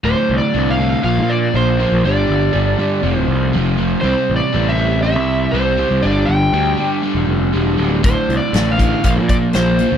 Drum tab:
HH |--------|--------|--------|--------|
SD |--------|--------|--------|--------|
BD |--------|--------|--------|--------|

HH |xxxxxxxx|
SD |--o---o-|
BD |o--ooo--|